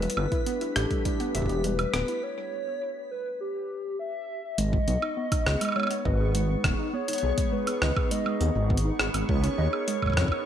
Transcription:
Already playing: A3 B3 E4 A4 B4 C#5 B6
0.00 G3 G4 B4, closed hi-hat
0.10 D4, closed hi-hat
0.17 G1 B3, high woodblock
0.32 E4, kick, closed hi-hat
0.46 B3, closed hi-hat
0.61 E4, closed hi-hat
0.76 A1 G4 A4, cross-stick, closed hi-hat
0.91 G3, kick, closed hi-hat
1.05 G3 G4, kick, closed hi-hat
1.20 B3, closed hi-hat
1.35 E1 E5, kick, closed hi-hat
1.38 kick
1.42 kick
1.46 G4, kick, closed hi-hat
1.64 G3 B4, closed hi-hat
1.79 G3, closed hi-hat, high woodblock
1.94 D1 B3, cross-stick, closed hi-hat
2.08 E4, closed hi-hat
2.23 C#5
3.11 B4
3.41 G4
3.99 E5
4.58 G#1 G#3 B3 D#5 C#6, closed hi-hat
4.65 D#4
4.73 G#3, kick
4.88 B1 B3, closed hi-hat
5.02 D#4, high woodblock
5.17 B3
5.32 D#4, kick, closed hi-hat, high woodblock
5.38 G#4
5.46 C#2 G#4, cross-stick
5.61 G#3, closed hi-hat, high woodblock
5.65 high woodblock
5.69 high woodblock
5.72 C#5, high woodblock
5.76 G#3, high woodblock
5.80 high woodblock
5.83 high woodblock
5.87 B3, closed hi-hat, high woodblock
6.05 G#1 B4 D#5, kick
6.20 G#4
6.35 G#3, closed hi-hat
6.49 G#3
6.64 D#1 B3, kick, cross-stick, closed hi-hat, low conga
6.79 D#4
6.94 B3 C#5
7.08 D#4, closed hi-hat
7.13 closed hi-hat
7.18 closed hi-hat
7.23 B1 G#4
7.38 G#3, kick, closed hi-hat
7.52 G#3 B4
7.67 B3, closed hi-hat, high woodblock
7.82 C#2 D#5, cross-stick, low conga
7.97 G#4, kick, high woodblock
8.11 G#3 D#5, closed hi-hat
8.26 G#3, high woodblock
8.41 D#2 B3, closed hi-hat
8.55 G#1 D#4
8.70 B3, kick
8.77 closed hi-hat
8.85 D#4
8.99 G#1 G#4, cross-stick
9.14 G#1 G#3, closed hi-hat, high woodblock
9.29 C#2 G#3 A#4 C#5, kick
9.44 C#4, closed hi-hat
9.58 D#2 D#5
9.62 C#5
9.73 G#4, high woodblock
9.88 G#3, closed hi-hat
10.02 G#3, kick, high woodblock
10.06 kick, high woodblock
10.10 kick, high woodblock
10.13 C#4, kick
10.17 F2, kick, cross-stick, closed hi-hat, high woodblock
10.21 kick, high woodblock
10.24 kick, high woodblock
10.28 D#4, kick, high woodblock

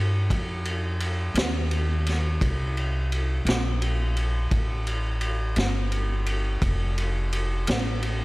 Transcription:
Already playing: G2
0.30 F2, kick, ride
0.65 ride
1.00 ride
1.34 D#2, snare, ride
1.71 ride
2.07 snare, ride
2.41 C2, kick, ride
2.77 ride
3.12 ride
3.45 A#1, snare, ride
3.82 ride
4.17 ride
4.51 A1, kick, ride
4.87 ride
5.21 ride
5.56 G1, snare, ride
5.92 ride
6.26 ride
6.62 F1, kick, ride
6.98 ride
7.33 ride
7.67 A1, snare, ride
8.03 ride

